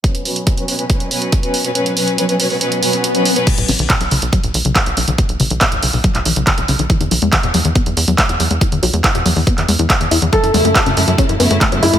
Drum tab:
CC |----------------|----------------|x---------------|----------------|
HH |xxoxxxoxxxoxxxox|xxoxxxooxxoxxxox|xxoxxxoxxxoxxxox|xxoxxxooxxoxxxox|
CP |----------------|----------------|----x-------x---|----x----x--x---|
BD |o---o---o---o---|----------------|o---o---o---o---|o---o---o---o---|

CC |----------------|----------------|----------------|
HH |xxoxxxoxxxoxxxox|xxoxxxooxxoxxxox|xxoxxxoxxxoxxxox|
CP |----x-------x---|----x----x--x---|----x-------x---|
BD |o---o---o---o---|o---o---o---o---|o---o---o---o---|